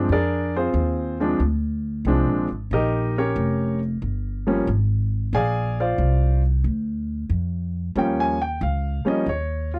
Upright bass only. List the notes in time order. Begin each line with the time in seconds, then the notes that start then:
0.09 F2
0.74 D#2
1.40 D2
2.05 C2
2.27 A#1
2.49 G#1
2.71 A#1
3.36 F1
4.02 G1
4.67 G#1
5.33 A#1
5.98 C2
6.64 D2
7.29 F2
7.95 D#2
8.61 C#2
9.05 muted upright bass stroke
9.26 D#2